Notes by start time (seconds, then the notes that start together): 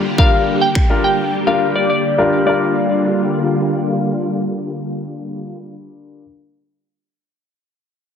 Already playing: D3 G3 A#3 F4, downlifter
0.18 G3 D4 F4 G4 A#4 F5, kick
0.61 G5
0.75 finger snap, kick
0.90 G3 D4 F4 A#4
1.04 G5
1.47 G3 D4 F4 A#4 F5
1.76 D5
1.90 D5
2.18 G3 D4 F4 A#4
2.45 D3 G3 A#3 D4 F4 A#4 D5